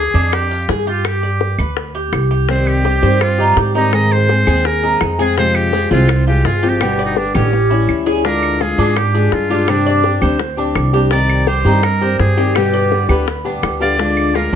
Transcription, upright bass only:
0.14 0.64 F2 medium
0.68 1.53 G2 medium
1.58 2.09 D2 medium
2.12 2.97 C2 medium
3.02 3.53 G2 loud
3.56 4.41 G#2 medium
4.47 4.97 D#2 loud
5.01 5.85 F2 medium
5.91 6.41 C2 loud
6.45 7.29 G1 medium
7.35 7.85 A1 loud
7.88 8.72 D2 medium
8.78 9.28 G#2 medium
9.32 10.16 G2 medium
10.22 10.72 D2 loud
10.75 11.59 C2 medium
11.64 12.15 G2 loud
12.19 13.03 G2 medium
13.08 13.59 D2 loud
13.62 14.47 D2 medium

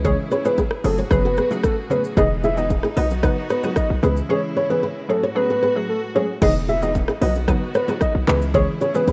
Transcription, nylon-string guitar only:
0.05 0.15 G#4 medium
0.05 0.14 C#5 medium
0.32 0.42 G#4 medium
0.32 0.41 B4 medium
0.45 0.55 A4 medium
0.45 0.54 C#5 medium
0.58 0.68 G#4 medium
0.58 0.68 B4 medium
0.85 0.95 A4 medium
0.85 0.94 C#5 medium
0.98 1.08 A4 medium
0.98 1.07 C#5 medium
1.25 1.34 F#4 medium
1.25 1.34 A4 medium
1.38 1.48 G#4 medium
1.38 1.47 B4 medium
1.91 2.01 A4 medium
1.91 2.00 C#5 medium
2.17 2.27 G#4 medium
2.17 2.27 B4 loud
2.44 2.54 E4 medium
2.44 2.53 G#4 medium
2.84 2.94 E4 medium
2.84 2.93 G#4 medium
2.97 3.07 F#4 medium
2.97 3.07 B4 medium
3.24 3.34 F#4 medium
3.24 3.33 B4 medium
3.50 3.60 A4 medium
3.50 3.60 C#5 medium
3.64 3.73 G#4 medium
3.64 3.73 B4 medium
4.03 4.13 G#4 medium
4.03 4.13 B4 medium
4.30 4.40 G#4 medium
4.30 4.39 C#5 medium
4.56 4.66 G#4 medium
4.56 4.66 B4 medium
4.70 4.80 A4 medium
4.70 4.79 C#5 medium
4.83 4.93 G#4 medium
4.83 4.92 B4 medium
5.10 5.20 A4 medium
5.10 5.19 C#5 medium
5.23 5.33 A4 medium
5.23 5.32 C#5 medium
5.50 5.59 F#4 medium
5.50 5.59 A4 medium
5.63 5.73 G#4 medium
5.63 5.72 B4 medium
6.16 6.26 A4 medium
6.16 6.25 C#5 medium
6.42 6.52 G#4 medium
6.42 6.52 B4 medium
6.69 6.79 E4 medium
6.69 6.78 G#4 medium
7.09 7.18 E4 medium
7.09 7.18 G#4 medium
7.22 7.32 F#4 medium
7.22 7.31 B4 medium
7.48 7.58 F#4 medium
7.48 7.58 B4 medium
7.75 7.85 A4 medium
7.75 7.84 C#5 medium
7.89 7.98 G#4 medium
7.89 7.98 B4 medium
8.28 8.38 G#4 medium
8.28 8.38 B4 medium
8.55 8.65 G#4 medium
8.55 8.64 C#5 medium
8.81 8.91 G#4 medium
8.81 8.91 B4 medium
8.95 9.04 A4 medium
8.95 9.04 C#5 medium
9.08 9.12 G#4 medium
9.08 9.12 B4 medium

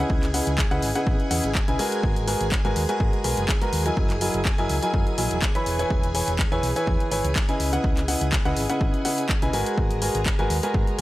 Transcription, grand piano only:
0.00 0.25 C#3 medium
0.00 0.25 E4 medium
0.00 0.25 B4 medium
0.00 0.25 D#5 medium
0.00 0.25 F#5 medium
0.34 0.51 C#3 medium
0.34 0.51 E4 medium
0.34 0.51 B4 medium
0.34 0.51 D#5 medium
0.34 0.51 F#5 medium
0.71 0.87 C#3 medium
0.71 0.87 E4 medium
0.71 0.87 B4 medium
0.71 0.87 D#5 medium
0.71 0.87 F#5 loud
0.95 1.28 C#3 medium
0.95 1.28 E4 medium
0.95 1.28 B4 medium
0.95 1.28 D#5 medium
0.95 1.28 F#5 medium
1.31 1.48 C#3 medium
1.31 1.48 E4 medium
1.31 1.48 B4 medium
1.31 1.48 D#5 medium
1.31 1.48 F#5 medium
1.68 1.76 C#3 medium
1.68 1.76 E4 medium
1.68 1.77 B4 medium
1.68 1.77 D#5 medium
1.68 1.76 G#5 medium
1.79 2.25 G#3 medium
1.79 2.25 F#4 medium
1.79 2.25 A#4 medium
1.79 2.25 B4 medium
1.79 2.25 G#5 loud
2.27 2.45 G#3 medium
2.27 2.45 F#4 medium
2.27 2.45 A#4 medium
2.27 2.45 B4 medium
2.27 2.45 G#5 medium
2.65 2.81 G#3 medium
2.65 2.81 F#4 medium
2.65 2.81 A#4 medium
2.65 2.81 B4 medium
2.65 2.81 G#5 loud
2.89 3.22 G#3 medium
2.89 3.22 F#4 medium
2.89 3.22 A#4 medium
2.89 3.22 B4 medium
2.89 3.22 G#5 medium
3.24 3.42 G#3 medium
3.24 3.42 F#4 medium
3.24 3.42 A#4 medium
3.24 3.42 B4 medium
3.24 3.42 G#5 medium
3.62 3.83 G#3 medium
3.62 3.83 F#4 medium
3.62 3.83 A#4 medium
3.62 3.83 B4 medium
3.62 3.83 A#5 medium
3.86 4.12 F#3 medium
3.86 4.12 E4 medium
3.86 4.12 A#4 medium
3.86 4.12 D#5 medium
3.86 4.12 G#5 medium
4.21 4.38 F#3 medium
4.21 4.38 E4 medium
4.21 4.38 A#4 medium
4.21 4.39 D#5 medium
4.21 4.38 G#5 medium
4.58 4.75 F#3 medium
4.58 4.75 E4 medium
4.58 4.75 A#4 medium
4.58 4.75 D#5 medium
4.58 4.75 G#5 loud
4.83 5.15 F#3 medium
4.83 5.15 E4 medium
4.83 5.15 A#4 medium
4.83 5.15 D#5 medium
4.83 5.15 G#5 medium
5.18 5.35 F#3 medium
5.18 5.35 E4 medium
5.18 5.35 A#4 medium
5.18 5.35 D#5 medium
5.18 5.35 G#5 medium
5.55 5.76 E3 medium
5.55 5.76 E4 medium
5.55 5.76 B4 medium
5.55 5.76 C#5 medium
5.55 5.76 B5 medium
5.79 6.06 E3 medium
5.79 6.06 E4 medium
5.79 6.06 B4 medium
5.79 6.06 C#5 medium
5.79 6.06 G#5 medium
6.15 6.32 E3 medium
6.15 6.32 E4 medium
6.15 6.32 B4 medium
6.15 6.32 C#5 medium
6.15 6.32 G#5 medium
6.52 6.68 E3 medium
6.52 6.68 E4 medium
6.52 6.68 B4 medium
6.52 6.68 C#5 medium
6.52 6.68 G#5 loud
6.76 7.09 E3 medium
6.76 7.09 E4 medium
6.76 7.09 B4 medium
6.76 7.09 C#5 medium
6.76 7.09 G#5 medium
7.11 7.29 E3 medium
7.11 7.29 E4 medium
7.11 7.29 B4 medium
7.11 7.29 C#5 medium
7.11 7.29 G#5 medium
7.49 7.70 C#3 medium
7.49 7.70 E4 medium
7.49 7.70 B4 medium
7.49 7.70 D#5 medium
7.49 7.70 G#5 medium
7.73 8.00 C#3 medium
7.73 8.00 E4 medium
7.73 8.00 B4 medium
7.73 8.00 D#5 medium
7.73 8.00 F#5 medium
8.08 8.26 C#3 medium
8.08 8.26 E4 medium
8.08 8.26 B4 medium
8.08 8.26 D#5 medium
8.08 8.26 F#5 medium
8.45 8.62 C#3 medium
8.45 8.62 E4 medium
8.45 8.62 B4 medium
8.45 8.62 D#5 medium
8.45 8.62 F#5 loud
8.70 9.02 C#3 medium
8.70 9.02 E4 medium
8.70 9.02 B4 medium
8.70 9.02 D#5 medium
8.70 9.02 F#5 medium
9.05 9.22 C#3 medium
9.05 9.22 E4 medium
9.05 9.22 B4 medium
9.05 9.22 D#5 medium
9.05 9.22 F#5 medium
9.42 9.51 C#3 medium
9.42 9.51 E4 medium
9.42 9.51 B4 medium
9.42 9.51 D#5 medium
9.42 9.51 G#5 medium
9.53 9.99 G#3 medium
9.53 9.99 F#4 medium
9.53 9.99 A#4 medium
9.53 9.99 B4 medium
9.53 9.99 G#5 loud
10.02 10.19 G#3 medium
10.02 10.19 F#4 medium
10.02 10.19 A#4 medium
10.02 10.19 B4 medium
10.02 10.19 G#5 medium
10.39 10.55 G#3 medium
10.39 10.55 F#4 medium
10.39 10.55 A#4 medium
10.39 10.55 B4 medium
10.39 10.55 G#5 loud
10.63 10.96 G#3 medium
10.63 10.96 F#4 medium
10.63 10.96 A#4 medium
10.63 10.96 B4 medium
10.63 10.96 G#5 medium

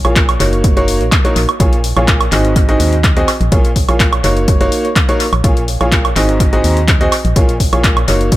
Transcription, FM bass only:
0.05 0.37 A#1 medium
0.40 1.02 F#1 loud
1.01 1.10 A#1 medium
1.36 1.47 A#1 medium
1.60 1.93 A#1 loud
1.97 2.29 A#1 medium
2.32 2.77 G#1 loud
2.80 3.25 D#2 medium
3.41 3.50 A#1 medium
3.52 3.85 A#1 loud
3.89 4.21 A#1 medium
4.24 4.69 F#1 loud
5.33 5.42 A#1 medium
5.44 5.77 A#1 loud
5.81 6.13 A#1 medium
6.16 6.61 G#1 loud
6.64 7.09 D#2 medium
7.25 7.34 A#1 medium
7.36 7.69 A#1 loud
7.73 8.05 A#1 medium
8.08 8.37 F#1 loud

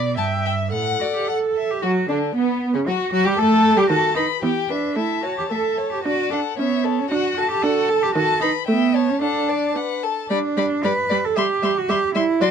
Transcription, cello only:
0.00 0.18 B2 soft
0.17 0.73 G2 soft
0.72 0.99 A2 soft
1.00 1.05 F#4 soft
1.15 1.29 G4 soft
1.27 1.72 A4 soft
1.70 1.83 G4 soft
1.82 2.08 F#4 soft
2.09 2.17 D4 soft
2.36 2.77 B3 medium
2.75 2.88 C#4 medium
2.87 3.12 F#4 medium
3.13 3.28 F#4 medium
3.27 3.40 G4 medium
3.39 3.80 A4 medium
3.78 3.89 G4 medium
3.90 4.15 F#4 medium
4.16 4.24 D#4 medium
4.43 4.51 B3 medium
4.69 4.97 D4 medium
4.96 5.23 E4 soft
5.23 5.37 F#4 soft
5.38 5.43 G4 soft
5.50 5.90 A4 medium
5.92 6.04 G4 soft
6.04 6.30 F#4 medium
6.31 6.39 D4 medium
6.57 7.01 B3 medium
6.99 7.10 C#4 medium
7.11 7.36 F#4 medium
7.37 7.50 F#4 medium
7.51 7.64 G4 medium
7.62 8.04 A4 medium
8.03 8.14 G4 medium
8.15 8.40 F#4 medium
8.41 8.49 D#4 medium
8.68 9.11 B3 medium
9.09 9.21 C#4 soft
9.22 9.75 D4 medium
10.30 10.85 D4 medium
10.84 11.26 B4 medium
11.25 11.38 A4 medium
11.37 11.79 G4 medium
11.78 11.91 F#4 medium
11.89 12.15 G4 medium
12.15 12.43 E4 medium
12.41 12.51 F#4 medium

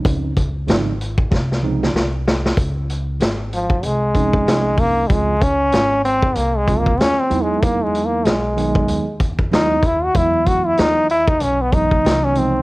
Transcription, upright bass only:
0.05 0.69 C#2 medium
0.68 1.28 G#1 medium
1.32 1.91 C2 loud
1.94 2.54 C2 medium
2.57 3.17 C#2 loud
3.20 3.80 G#1 medium
3.83 4.43 C2 medium
4.47 5.07 C2 medium
5.10 5.70 C#2 loud
5.73 6.33 G#1 loud
6.36 6.96 C2 loud
6.99 7.29 D#2 medium
7.31 8.22 E2 medium
8.25 8.85 B1 medium
8.88 9.49 D#2 medium
9.52 10.12 D#2 medium
10.15 10.75 E2 loud
10.78 11.38 D#2 medium
11.41 12.02 B1 medium
12.05 12.62 C2 loud

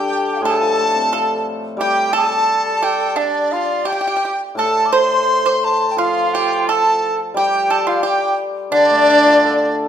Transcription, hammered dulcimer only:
0.00 1.45 G3 medium
0.00 0.95 D4 soft
0.00 1.12 G4 soft
0.00 1.29 A4 soft
0.41 2.46 A2 medium
0.61 1.96 F3 soft
0.78 2.13 A3 soft
0.95 2.30 C4 soft
1.12 2.48 F4 soft
1.77 3.86 G3 medium
4.55 6.67 A2 medium
5.97 8.04 F3 medium
7.34 9.42 G3 medium
8.72 9.88 D3 medium
8.90 9.88 A3 medium
9.07 9.88 D4 medium
9.26 9.88 F4 medium
9.44 9.88 A4 medium

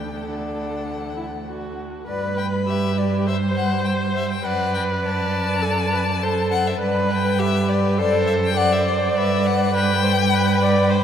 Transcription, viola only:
0.00 0.16 D4 soft
0.25 1.13 D4 soft
1.17 1.25 E4 medium
1.46 2.06 F#4 soft
2.07 2.63 B4 medium
2.68 3.28 G4 medium
3.27 4.44 C5 medium
4.45 5.63 B4 medium
5.62 5.91 A4 medium
5.92 6.00 B4 medium
6.21 6.79 A4 medium
6.79 7.40 B4 medium
7.39 8.00 G4 medium
7.98 8.56 A4 loud
8.57 9.72 D5 medium
9.74 10.03 B4 medium
10.03 10.11 C5 medium
10.32 10.64 B4 medium
10.62 10.91 D5 loud
10.90 11.04 C5 medium

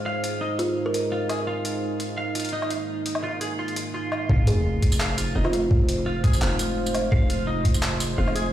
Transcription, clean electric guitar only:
0.06 0.22 F5 loud
0.24 0.40 F4 medium
0.41 0.58 D#4 medium
1.12 1.28 F4 medium
1.29 1.40 G#4 medium
1.47 2.16 F4 medium
2.18 2.34 F5 medium
2.35 2.51 F4 medium
2.53 2.70 D#4 medium
3.24 3.40 F4 medium
3.41 3.52 G#4 medium
3.59 3.75 F4 medium
3.94 4.11 F4 medium
4.12 4.28 F4 medium
4.30 4.99 F4 medium
5.00 5.16 F5 loud
5.18 5.34 F4 medium
5.35 5.52 D#4 medium
6.06 6.22 F4 medium
6.24 6.34 G#4 medium
6.41 7.10 F4 medium
7.12 7.28 F5 loud
7.30 7.46 F4 medium
7.47 7.64 D#4 loud
8.18 8.34 F4 medium
8.36 8.46 G#4 medium

